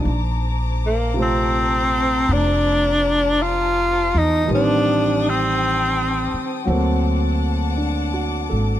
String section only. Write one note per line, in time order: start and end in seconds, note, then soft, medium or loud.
0.05 4.43 C5 medium
0.05 6.63 A5 medium
0.05 4.43 A#5 medium
0.05 4.43 D6 medium
4.48 8.80 C4 medium
4.48 6.65 G5 medium
4.48 6.64 D#6 medium
6.67 8.80 F#5 medium
6.67 8.80 A5 medium
6.67 8.80 D6 medium